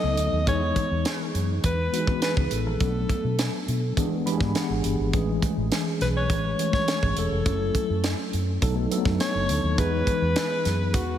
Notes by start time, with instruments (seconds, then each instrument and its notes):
Already playing: tine electric piano F#3 A3 B3 D#4 A4, alto saxophone D#5
0.04 fingered electric bass C#2
0.17 fingered electric bass D2, closed hi-hat
0.32 fingered electric bass D#2
0.47 fingered electric bass E2, tine electric piano E3 G#3 B3 D#4 G#4, alto saxophone C#5, kick, closed hi-hat
0.76 kick, closed hi-hat
0.91 fingered electric bass E2
1.05 snare, closed hi-hat
1.35 fingered electric bass F#2, closed hi-hat
1.64 fingered electric bass E2, alto saxophone B4, kick, closed hi-hat
1.92 tine electric piano E3 G#3 B3 D#4 F#4, closed hi-hat
2.00 tine electric piano G#4
2.07 kick
2.22 alto saxophone B4, snare, closed hi-hat
2.37 fingered electric bass C#2, kick
2.51 fingered electric bass A1, alto saxophone A4, closed hi-hat
2.66 fingered electric bass A#1
2.80 fingered electric bass B1, tine electric piano F#3 A3 B3 C#4 A4, kick, closed hi-hat
2.87 tine electric piano D4
3.09 kick, closed hi-hat
3.24 fingered electric bass B2
3.39 snare, closed hi-hat
3.68 fingered electric bass B2, closed hi-hat
3.97 tine electric piano E3 G#3 B3 D4 G#4, fingered electric bass E3, kick, closed hi-hat
4.26 tine electric piano E3 G#3 B3 D4 G4 B5, closed hi-hat
4.33 tine electric piano G#4
4.41 fingered electric bass G#2, kick, snare
4.55 tine electric piano F#5, snare, closed hi-hat
4.70 fingered electric bass G#1
4.84 fingered electric bass G1, closed hi-hat
4.99 fingered electric bass G#1
5.13 fingered electric bass A1, tine electric piano E3 G#3 A3 C#4 G#4, kick, closed hi-hat
5.42 kick, closed hi-hat
5.57 fingered electric bass A1
5.72 snare, closed hi-hat
6.01 fingered electric bass B1, alto saxophone B4, snare, closed hi-hat
6.16 alto saxophone C#5
6.30 fingered electric bass A1, kick, closed hi-hat
6.59 tine electric piano E3 G#3 A3 C#4 G#4, closed hi-hat
6.73 alto saxophone C#5, kick, snare
6.88 snare, closed hi-hat
7.03 fingered electric bass G#1, kick
7.17 fingered electric bass E1, alto saxophone A4, closed hi-hat
7.32 fingered electric bass F1
7.46 fingered electric bass F#1, tine electric piano F#3 A3 C#4 E4 A4, kick, closed hi-hat
7.75 kick, closed hi-hat
7.90 fingered electric bass F#2
8.04 snare, closed hi-hat
8.33 fingered electric bass F#2, closed hi-hat
8.62 fingered electric bass B1, tine electric piano F#3 A3 B3 D#4 A4, kick, closed hi-hat
8.91 tine electric piano F#3 A3 B3 D4 A4, closed hi-hat
8.98 tine electric piano D#4
9.05 fingered electric bass F#2, kick, snare
9.20 alto saxophone C#5, snare, closed hi-hat
9.35 fingered electric bass F#1
9.49 fingered electric bass D2, closed hi-hat
9.64 fingered electric bass D#2
9.78 fingered electric bass E2, tine electric piano E3 G#3 B3 D#4 G#4, alto saxophone B4, kick, closed hi-hat
10.07 kick, closed hi-hat
10.22 fingered electric bass E2
10.36 snare, closed hi-hat
10.65 fingered electric bass F#2, snare, closed hi-hat
10.94 fingered electric bass E2, alto saxophone F#4, kick, closed hi-hat